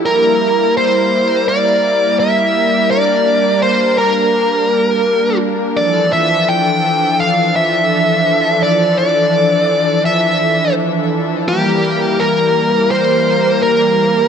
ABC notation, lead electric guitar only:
X:1
M:4/4
L:1/8
Q:1/4=84
K:Dm
V:1 name="Lead electric guitar"
B2 c2 d2 e2 | d2 c B4 z | d e g2 f e3 | d d3 e2 z2 |
G2 B2 c2 B2 |]